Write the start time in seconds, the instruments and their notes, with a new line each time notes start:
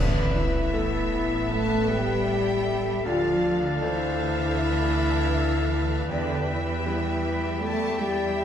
Already playing: grand piano A1, double bass section A1, timpani A2, cello section D3, viola section B3 A4, french horn section D4, flute section B4, violin section D5 E5, clarinet E5, oboe B5
0.35 cello section E3, french horn section E4, violin section E5
0.73 grand piano A3 B3 A4, flute section A4
1.50 cello section A3, french horn section A4, flute section B4, violin section A5
1.89 cello section G3, french horn section G4, violin section G5
2.28 flute section E5
3.04 double bass section D2, grand piano D2, cello section F3, viola section D4, french horn section F4, flute section D5, clarinet F5, violin section F5, oboe A5
3.63 cello section D3, french horn section D4, violin section D5
3.82 cello section E3, grand piano A3 D4 A4, french horn section E4, flute section C5, violin section E5
4.58 flute section B4
5.34 flute section A4
5.72 flute section B4
6.09 double bass section E2, grand piano E2, cello section D3, viola section G3 G4, french horn section D4, violin section D5 E5, clarinet G5, oboe B5
6.48 cello section E3, french horn section E4, violin section E5
6.86 grand piano G3 B3 E4
7.61 cello section A3, french horn section A4, flute section D5, violin section A5
7.99 cello section G3, french horn section G4, violin section G5
8.38 flute section E5